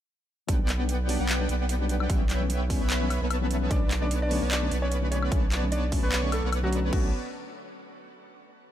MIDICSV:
0, 0, Header, 1, 6, 480
1, 0, Start_track
1, 0, Key_signature, 2, "minor"
1, 0, Tempo, 402685
1, 578, Time_signature, 4, 2, 24, 8
1, 10393, End_track
2, 0, Start_track
2, 0, Title_t, "Supersaw synth"
2, 0, Program_c, 0, 81
2, 579, Note_on_c, 0, 59, 87
2, 579, Note_on_c, 0, 71, 76
2, 579, Note_on_c, 0, 74, 76
2, 579, Note_on_c, 0, 78, 78
2, 579, Note_on_c, 0, 79, 93
2, 1397, Note_off_c, 0, 59, 0
2, 1397, Note_off_c, 0, 71, 0
2, 1397, Note_off_c, 0, 74, 0
2, 1397, Note_off_c, 0, 78, 0
2, 1397, Note_off_c, 0, 79, 0
2, 1429, Note_on_c, 0, 59, 84
2, 1429, Note_on_c, 0, 71, 75
2, 1429, Note_on_c, 0, 74, 75
2, 1429, Note_on_c, 0, 78, 74
2, 1429, Note_on_c, 0, 79, 88
2, 1752, Note_off_c, 0, 59, 0
2, 1752, Note_off_c, 0, 71, 0
2, 1752, Note_off_c, 0, 74, 0
2, 1752, Note_off_c, 0, 78, 0
2, 1752, Note_off_c, 0, 79, 0
2, 1777, Note_on_c, 0, 59, 82
2, 1777, Note_on_c, 0, 71, 75
2, 1777, Note_on_c, 0, 74, 75
2, 1777, Note_on_c, 0, 79, 90
2, 1778, Note_on_c, 0, 78, 75
2, 2471, Note_off_c, 0, 59, 0
2, 2471, Note_off_c, 0, 71, 0
2, 2471, Note_off_c, 0, 74, 0
2, 2471, Note_off_c, 0, 79, 0
2, 2472, Note_off_c, 0, 78, 0
2, 2499, Note_on_c, 0, 59, 92
2, 2499, Note_on_c, 0, 71, 89
2, 2499, Note_on_c, 0, 76, 86
2, 2499, Note_on_c, 0, 79, 103
2, 2500, Note_on_c, 0, 73, 87
2, 3317, Note_off_c, 0, 59, 0
2, 3317, Note_off_c, 0, 71, 0
2, 3317, Note_off_c, 0, 76, 0
2, 3317, Note_off_c, 0, 79, 0
2, 3318, Note_off_c, 0, 73, 0
2, 3348, Note_on_c, 0, 83, 94
2, 3349, Note_on_c, 0, 59, 81
2, 3349, Note_on_c, 0, 71, 76
2, 3349, Note_on_c, 0, 73, 77
2, 3349, Note_on_c, 0, 76, 79
2, 3797, Note_off_c, 0, 73, 0
2, 3797, Note_off_c, 0, 76, 0
2, 3797, Note_off_c, 0, 83, 0
2, 3798, Note_off_c, 0, 59, 0
2, 3798, Note_off_c, 0, 71, 0
2, 3829, Note_on_c, 0, 71, 85
2, 3829, Note_on_c, 0, 73, 85
2, 3829, Note_on_c, 0, 76, 88
2, 3830, Note_on_c, 0, 59, 95
2, 3830, Note_on_c, 0, 81, 101
2, 4392, Note_off_c, 0, 73, 0
2, 4393, Note_off_c, 0, 59, 0
2, 4393, Note_off_c, 0, 71, 0
2, 4393, Note_off_c, 0, 76, 0
2, 4393, Note_off_c, 0, 81, 0
2, 5269, Note_on_c, 0, 59, 82
2, 5269, Note_on_c, 0, 71, 77
2, 5269, Note_on_c, 0, 73, 74
2, 5269, Note_on_c, 0, 74, 76
2, 5269, Note_on_c, 0, 81, 91
2, 5592, Note_off_c, 0, 59, 0
2, 5592, Note_off_c, 0, 73, 0
2, 5592, Note_off_c, 0, 74, 0
2, 5593, Note_off_c, 0, 71, 0
2, 5593, Note_off_c, 0, 81, 0
2, 5618, Note_on_c, 0, 59, 83
2, 5619, Note_on_c, 0, 71, 75
2, 5619, Note_on_c, 0, 73, 75
2, 5619, Note_on_c, 0, 74, 77
2, 5619, Note_on_c, 0, 83, 92
2, 6312, Note_off_c, 0, 59, 0
2, 6312, Note_off_c, 0, 71, 0
2, 6312, Note_off_c, 0, 73, 0
2, 6312, Note_off_c, 0, 74, 0
2, 6312, Note_off_c, 0, 83, 0
2, 6337, Note_on_c, 0, 73, 88
2, 6337, Note_on_c, 0, 81, 105
2, 6338, Note_on_c, 0, 59, 94
2, 6338, Note_on_c, 0, 71, 88
2, 7157, Note_off_c, 0, 59, 0
2, 7157, Note_off_c, 0, 71, 0
2, 7157, Note_off_c, 0, 73, 0
2, 7157, Note_off_c, 0, 81, 0
2, 7187, Note_on_c, 0, 59, 87
2, 7187, Note_on_c, 0, 71, 77
2, 7187, Note_on_c, 0, 85, 94
2, 7188, Note_on_c, 0, 73, 77
2, 7188, Note_on_c, 0, 74, 77
2, 7636, Note_off_c, 0, 71, 0
2, 7637, Note_off_c, 0, 59, 0
2, 7637, Note_off_c, 0, 73, 0
2, 7637, Note_off_c, 0, 74, 0
2, 7637, Note_off_c, 0, 85, 0
2, 7668, Note_on_c, 0, 59, 94
2, 7668, Note_on_c, 0, 71, 87
2, 7668, Note_on_c, 0, 73, 86
2, 7668, Note_on_c, 0, 74, 84
2, 7668, Note_on_c, 0, 78, 101
2, 8232, Note_off_c, 0, 59, 0
2, 8232, Note_off_c, 0, 71, 0
2, 8232, Note_off_c, 0, 73, 0
2, 8232, Note_off_c, 0, 74, 0
2, 8232, Note_off_c, 0, 78, 0
2, 8258, Note_on_c, 0, 71, 82
2, 8258, Note_on_c, 0, 73, 80
2, 8258, Note_on_c, 0, 74, 78
2, 8259, Note_on_c, 0, 59, 89
2, 8259, Note_on_c, 0, 81, 95
2, 8441, Note_off_c, 0, 59, 0
2, 8441, Note_off_c, 0, 71, 0
2, 8441, Note_off_c, 0, 73, 0
2, 8441, Note_off_c, 0, 74, 0
2, 8441, Note_off_c, 0, 81, 0
2, 10393, End_track
3, 0, Start_track
3, 0, Title_t, "Grand piano"
3, 0, Program_c, 1, 0
3, 4420, Note_on_c, 1, 62, 78
3, 4421, Note_on_c, 1, 74, 100
3, 4624, Note_off_c, 1, 62, 0
3, 4624, Note_off_c, 1, 74, 0
3, 4791, Note_on_c, 1, 62, 79
3, 4792, Note_on_c, 1, 74, 90
3, 4915, Note_off_c, 1, 62, 0
3, 4915, Note_off_c, 1, 74, 0
3, 5032, Note_on_c, 1, 62, 77
3, 5033, Note_on_c, 1, 74, 94
3, 5228, Note_off_c, 1, 62, 0
3, 5229, Note_off_c, 1, 74, 0
3, 5379, Note_on_c, 1, 62, 77
3, 5381, Note_on_c, 1, 74, 91
3, 5583, Note_off_c, 1, 62, 0
3, 5584, Note_off_c, 1, 74, 0
3, 5747, Note_on_c, 1, 61, 81
3, 5747, Note_on_c, 1, 73, 96
3, 5946, Note_off_c, 1, 61, 0
3, 5946, Note_off_c, 1, 73, 0
3, 6095, Note_on_c, 1, 73, 93
3, 6096, Note_on_c, 1, 61, 74
3, 6301, Note_off_c, 1, 73, 0
3, 6302, Note_off_c, 1, 61, 0
3, 6816, Note_on_c, 1, 74, 97
3, 6817, Note_on_c, 1, 62, 78
3, 7022, Note_off_c, 1, 62, 0
3, 7022, Note_off_c, 1, 74, 0
3, 7187, Note_on_c, 1, 71, 97
3, 7188, Note_on_c, 1, 59, 79
3, 7386, Note_off_c, 1, 59, 0
3, 7386, Note_off_c, 1, 71, 0
3, 7537, Note_on_c, 1, 57, 79
3, 7538, Note_on_c, 1, 69, 97
3, 7742, Note_off_c, 1, 57, 0
3, 7743, Note_off_c, 1, 69, 0
3, 7909, Note_on_c, 1, 66, 98
3, 7911, Note_on_c, 1, 54, 80
3, 8107, Note_off_c, 1, 54, 0
3, 8107, Note_off_c, 1, 66, 0
3, 8261, Note_on_c, 1, 66, 94
3, 8442, Note_off_c, 1, 66, 0
3, 10393, End_track
4, 0, Start_track
4, 0, Title_t, "Tine electric piano"
4, 0, Program_c, 2, 4
4, 567, Note_on_c, 2, 54, 88
4, 574, Note_on_c, 2, 55, 81
4, 583, Note_on_c, 2, 59, 81
4, 590, Note_on_c, 2, 62, 97
4, 692, Note_off_c, 2, 54, 0
4, 696, Note_off_c, 2, 55, 0
4, 700, Note_off_c, 2, 59, 0
4, 704, Note_off_c, 2, 62, 0
4, 937, Note_on_c, 2, 54, 75
4, 945, Note_on_c, 2, 55, 67
4, 953, Note_on_c, 2, 59, 70
4, 962, Note_on_c, 2, 62, 83
4, 1044, Note_off_c, 2, 54, 0
4, 1048, Note_off_c, 2, 55, 0
4, 1052, Note_off_c, 2, 59, 0
4, 1056, Note_off_c, 2, 62, 0
4, 1285, Note_on_c, 2, 54, 101
4, 1294, Note_on_c, 2, 55, 89
4, 1301, Note_on_c, 2, 59, 88
4, 1309, Note_on_c, 2, 62, 109
4, 1411, Note_off_c, 2, 54, 0
4, 1416, Note_off_c, 2, 55, 0
4, 1419, Note_off_c, 2, 59, 0
4, 1423, Note_off_c, 2, 62, 0
4, 1656, Note_on_c, 2, 54, 90
4, 1664, Note_on_c, 2, 55, 80
4, 1672, Note_on_c, 2, 59, 79
4, 1680, Note_on_c, 2, 62, 98
4, 1725, Note_off_c, 2, 54, 0
4, 1730, Note_off_c, 2, 55, 0
4, 1733, Note_off_c, 2, 59, 0
4, 1738, Note_off_c, 2, 62, 0
4, 2137, Note_on_c, 2, 54, 82
4, 2145, Note_on_c, 2, 55, 76
4, 2153, Note_on_c, 2, 59, 76
4, 2161, Note_on_c, 2, 62, 91
4, 2466, Note_off_c, 2, 54, 0
4, 2470, Note_off_c, 2, 55, 0
4, 2474, Note_off_c, 2, 59, 0
4, 2478, Note_off_c, 2, 62, 0
4, 2487, Note_on_c, 2, 52, 91
4, 2496, Note_on_c, 2, 55, 83
4, 2502, Note_on_c, 2, 59, 80
4, 2512, Note_on_c, 2, 61, 98
4, 2612, Note_off_c, 2, 52, 0
4, 2617, Note_off_c, 2, 55, 0
4, 2620, Note_off_c, 2, 59, 0
4, 2625, Note_off_c, 2, 61, 0
4, 2859, Note_on_c, 2, 52, 77
4, 2867, Note_on_c, 2, 55, 69
4, 2875, Note_on_c, 2, 59, 69
4, 2883, Note_on_c, 2, 61, 83
4, 2965, Note_off_c, 2, 52, 0
4, 2969, Note_off_c, 2, 55, 0
4, 2973, Note_off_c, 2, 59, 0
4, 2977, Note_off_c, 2, 61, 0
4, 3209, Note_on_c, 2, 52, 101
4, 3216, Note_on_c, 2, 55, 90
4, 3225, Note_on_c, 2, 59, 91
4, 3233, Note_on_c, 2, 61, 110
4, 3333, Note_off_c, 2, 52, 0
4, 3337, Note_off_c, 2, 55, 0
4, 3341, Note_off_c, 2, 59, 0
4, 3345, Note_off_c, 2, 61, 0
4, 3578, Note_on_c, 2, 52, 90
4, 3586, Note_on_c, 2, 55, 80
4, 3593, Note_on_c, 2, 59, 81
4, 3602, Note_on_c, 2, 61, 100
4, 3647, Note_off_c, 2, 52, 0
4, 3651, Note_off_c, 2, 55, 0
4, 3654, Note_off_c, 2, 59, 0
4, 3659, Note_off_c, 2, 61, 0
4, 4057, Note_on_c, 2, 52, 82
4, 4067, Note_on_c, 2, 55, 76
4, 4074, Note_on_c, 2, 59, 73
4, 4081, Note_on_c, 2, 61, 93
4, 4386, Note_off_c, 2, 52, 0
4, 4391, Note_off_c, 2, 55, 0
4, 4395, Note_off_c, 2, 59, 0
4, 4398, Note_off_c, 2, 61, 0
4, 4407, Note_on_c, 2, 50, 92
4, 4416, Note_on_c, 2, 54, 82
4, 4423, Note_on_c, 2, 57, 85
4, 4432, Note_on_c, 2, 61, 99
4, 4532, Note_off_c, 2, 50, 0
4, 4537, Note_off_c, 2, 54, 0
4, 4540, Note_off_c, 2, 57, 0
4, 4545, Note_off_c, 2, 61, 0
4, 4780, Note_on_c, 2, 50, 77
4, 4788, Note_on_c, 2, 54, 70
4, 4795, Note_on_c, 2, 57, 69
4, 4804, Note_on_c, 2, 61, 82
4, 4886, Note_off_c, 2, 50, 0
4, 4890, Note_off_c, 2, 54, 0
4, 4893, Note_off_c, 2, 57, 0
4, 4898, Note_off_c, 2, 61, 0
4, 5128, Note_on_c, 2, 50, 101
4, 5135, Note_on_c, 2, 54, 94
4, 5144, Note_on_c, 2, 57, 96
4, 5152, Note_on_c, 2, 61, 109
4, 5252, Note_off_c, 2, 50, 0
4, 5256, Note_off_c, 2, 54, 0
4, 5261, Note_off_c, 2, 57, 0
4, 5265, Note_off_c, 2, 61, 0
4, 5497, Note_on_c, 2, 50, 87
4, 5505, Note_on_c, 2, 54, 84
4, 5514, Note_on_c, 2, 57, 81
4, 5521, Note_on_c, 2, 61, 100
4, 5566, Note_off_c, 2, 50, 0
4, 5570, Note_off_c, 2, 54, 0
4, 5574, Note_off_c, 2, 57, 0
4, 5578, Note_off_c, 2, 61, 0
4, 5975, Note_on_c, 2, 50, 84
4, 5983, Note_on_c, 2, 54, 77
4, 5991, Note_on_c, 2, 57, 74
4, 6000, Note_on_c, 2, 61, 93
4, 6305, Note_off_c, 2, 50, 0
4, 6309, Note_off_c, 2, 54, 0
4, 6313, Note_off_c, 2, 57, 0
4, 6318, Note_off_c, 2, 61, 0
4, 6326, Note_on_c, 2, 50, 92
4, 6334, Note_on_c, 2, 54, 84
4, 6342, Note_on_c, 2, 57, 84
4, 6350, Note_on_c, 2, 61, 101
4, 6452, Note_off_c, 2, 50, 0
4, 6456, Note_off_c, 2, 54, 0
4, 6460, Note_off_c, 2, 57, 0
4, 6463, Note_off_c, 2, 61, 0
4, 6696, Note_on_c, 2, 50, 76
4, 6705, Note_on_c, 2, 54, 71
4, 6713, Note_on_c, 2, 57, 72
4, 6722, Note_on_c, 2, 61, 84
4, 6804, Note_off_c, 2, 50, 0
4, 6808, Note_off_c, 2, 54, 0
4, 6812, Note_off_c, 2, 57, 0
4, 6816, Note_off_c, 2, 61, 0
4, 7047, Note_on_c, 2, 50, 101
4, 7056, Note_on_c, 2, 54, 94
4, 7063, Note_on_c, 2, 57, 94
4, 7070, Note_on_c, 2, 61, 112
4, 7172, Note_off_c, 2, 50, 0
4, 7177, Note_off_c, 2, 54, 0
4, 7180, Note_off_c, 2, 57, 0
4, 7184, Note_off_c, 2, 61, 0
4, 7417, Note_on_c, 2, 50, 87
4, 7424, Note_on_c, 2, 54, 83
4, 7432, Note_on_c, 2, 57, 82
4, 7441, Note_on_c, 2, 61, 97
4, 7486, Note_off_c, 2, 50, 0
4, 7490, Note_off_c, 2, 54, 0
4, 7493, Note_off_c, 2, 57, 0
4, 7498, Note_off_c, 2, 61, 0
4, 7898, Note_on_c, 2, 50, 85
4, 7905, Note_on_c, 2, 54, 78
4, 7914, Note_on_c, 2, 57, 78
4, 7921, Note_on_c, 2, 61, 93
4, 8207, Note_off_c, 2, 50, 0
4, 8222, Note_on_c, 2, 50, 89
4, 8230, Note_off_c, 2, 54, 0
4, 8235, Note_off_c, 2, 57, 0
4, 8238, Note_off_c, 2, 61, 0
4, 8245, Note_on_c, 2, 54, 78
4, 8268, Note_on_c, 2, 57, 80
4, 8293, Note_on_c, 2, 61, 93
4, 8421, Note_off_c, 2, 50, 0
4, 8433, Note_off_c, 2, 54, 0
4, 8446, Note_off_c, 2, 57, 0
4, 8459, Note_off_c, 2, 61, 0
4, 10393, End_track
5, 0, Start_track
5, 0, Title_t, "Sub bass"
5, 0, Program_c, 3, 38
5, 578, Note_on_c, 3, 35, 99
5, 1402, Note_off_c, 3, 35, 0
5, 1429, Note_on_c, 3, 35, 96
5, 1757, Note_off_c, 3, 35, 0
5, 1779, Note_on_c, 3, 35, 98
5, 2476, Note_off_c, 3, 35, 0
5, 2499, Note_on_c, 3, 35, 96
5, 3323, Note_off_c, 3, 35, 0
5, 3349, Note_on_c, 3, 35, 96
5, 3803, Note_off_c, 3, 35, 0
5, 3830, Note_on_c, 3, 35, 94
5, 4397, Note_off_c, 3, 35, 0
5, 4419, Note_on_c, 3, 35, 100
5, 5243, Note_off_c, 3, 35, 0
5, 5269, Note_on_c, 3, 35, 97
5, 5597, Note_off_c, 3, 35, 0
5, 5619, Note_on_c, 3, 35, 98
5, 6317, Note_off_c, 3, 35, 0
5, 6339, Note_on_c, 3, 35, 99
5, 7162, Note_off_c, 3, 35, 0
5, 7187, Note_on_c, 3, 35, 98
5, 7642, Note_off_c, 3, 35, 0
5, 7668, Note_on_c, 3, 35, 100
5, 8236, Note_off_c, 3, 35, 0
5, 8258, Note_on_c, 3, 35, 99
5, 8481, Note_off_c, 3, 35, 0
5, 10393, End_track
6, 0, Start_track
6, 0, Title_t, "Drums"
6, 578, Note_on_c, 9, 36, 118
6, 578, Note_on_c, 9, 42, 81
6, 697, Note_off_c, 9, 42, 0
6, 698, Note_off_c, 9, 36, 0
6, 819, Note_on_c, 9, 39, 62
6, 819, Note_on_c, 9, 42, 70
6, 938, Note_off_c, 9, 39, 0
6, 938, Note_off_c, 9, 42, 0
6, 1059, Note_on_c, 9, 42, 83
6, 1178, Note_off_c, 9, 42, 0
6, 1298, Note_on_c, 9, 46, 99
6, 1417, Note_off_c, 9, 46, 0
6, 1538, Note_on_c, 9, 39, 120
6, 1538, Note_on_c, 9, 42, 82
6, 1657, Note_off_c, 9, 39, 0
6, 1657, Note_off_c, 9, 42, 0
6, 1778, Note_on_c, 9, 42, 70
6, 1897, Note_off_c, 9, 42, 0
6, 2017, Note_on_c, 9, 42, 83
6, 2137, Note_off_c, 9, 42, 0
6, 2258, Note_on_c, 9, 42, 66
6, 2377, Note_off_c, 9, 42, 0
6, 2389, Note_on_c, 9, 76, 60
6, 2499, Note_on_c, 9, 36, 122
6, 2499, Note_on_c, 9, 42, 83
6, 2508, Note_off_c, 9, 76, 0
6, 2618, Note_off_c, 9, 36, 0
6, 2618, Note_off_c, 9, 42, 0
6, 2737, Note_on_c, 9, 39, 64
6, 2737, Note_on_c, 9, 42, 70
6, 2857, Note_off_c, 9, 39, 0
6, 2857, Note_off_c, 9, 42, 0
6, 2978, Note_on_c, 9, 42, 85
6, 3097, Note_off_c, 9, 42, 0
6, 3219, Note_on_c, 9, 36, 64
6, 3219, Note_on_c, 9, 46, 99
6, 3338, Note_off_c, 9, 36, 0
6, 3338, Note_off_c, 9, 46, 0
6, 3459, Note_on_c, 9, 39, 124
6, 3459, Note_on_c, 9, 42, 85
6, 3578, Note_off_c, 9, 39, 0
6, 3578, Note_off_c, 9, 42, 0
6, 3700, Note_on_c, 9, 42, 70
6, 3700, Note_on_c, 9, 76, 61
6, 3819, Note_off_c, 9, 42, 0
6, 3819, Note_off_c, 9, 76, 0
6, 3940, Note_on_c, 9, 42, 84
6, 3940, Note_on_c, 9, 76, 79
6, 4059, Note_off_c, 9, 42, 0
6, 4059, Note_off_c, 9, 76, 0
6, 4179, Note_on_c, 9, 42, 66
6, 4298, Note_off_c, 9, 42, 0
6, 4419, Note_on_c, 9, 36, 126
6, 4419, Note_on_c, 9, 42, 82
6, 4538, Note_off_c, 9, 36, 0
6, 4538, Note_off_c, 9, 42, 0
6, 4659, Note_on_c, 9, 39, 67
6, 4659, Note_on_c, 9, 42, 69
6, 4778, Note_off_c, 9, 39, 0
6, 4778, Note_off_c, 9, 42, 0
6, 4899, Note_on_c, 9, 42, 82
6, 5019, Note_off_c, 9, 42, 0
6, 5138, Note_on_c, 9, 46, 93
6, 5257, Note_off_c, 9, 46, 0
6, 5379, Note_on_c, 9, 39, 127
6, 5379, Note_on_c, 9, 42, 81
6, 5499, Note_off_c, 9, 39, 0
6, 5499, Note_off_c, 9, 42, 0
6, 5621, Note_on_c, 9, 42, 68
6, 5740, Note_off_c, 9, 42, 0
6, 5860, Note_on_c, 9, 42, 84
6, 5979, Note_off_c, 9, 42, 0
6, 6100, Note_on_c, 9, 42, 66
6, 6219, Note_off_c, 9, 42, 0
6, 6229, Note_on_c, 9, 76, 58
6, 6338, Note_on_c, 9, 36, 122
6, 6338, Note_on_c, 9, 42, 80
6, 6348, Note_off_c, 9, 76, 0
6, 6458, Note_off_c, 9, 36, 0
6, 6458, Note_off_c, 9, 42, 0
6, 6579, Note_on_c, 9, 39, 65
6, 6579, Note_on_c, 9, 42, 65
6, 6698, Note_off_c, 9, 39, 0
6, 6698, Note_off_c, 9, 42, 0
6, 6817, Note_on_c, 9, 42, 81
6, 6936, Note_off_c, 9, 42, 0
6, 7057, Note_on_c, 9, 46, 93
6, 7058, Note_on_c, 9, 36, 66
6, 7177, Note_off_c, 9, 46, 0
6, 7178, Note_off_c, 9, 36, 0
6, 7297, Note_on_c, 9, 39, 124
6, 7297, Note_on_c, 9, 42, 78
6, 7416, Note_off_c, 9, 39, 0
6, 7416, Note_off_c, 9, 42, 0
6, 7537, Note_on_c, 9, 42, 67
6, 7537, Note_on_c, 9, 76, 62
6, 7656, Note_off_c, 9, 42, 0
6, 7656, Note_off_c, 9, 76, 0
6, 7778, Note_on_c, 9, 42, 77
6, 7778, Note_on_c, 9, 76, 79
6, 7897, Note_off_c, 9, 42, 0
6, 7897, Note_off_c, 9, 76, 0
6, 8017, Note_on_c, 9, 42, 64
6, 8136, Note_off_c, 9, 42, 0
6, 8257, Note_on_c, 9, 49, 89
6, 8258, Note_on_c, 9, 36, 117
6, 8376, Note_off_c, 9, 49, 0
6, 8377, Note_off_c, 9, 36, 0
6, 10393, End_track
0, 0, End_of_file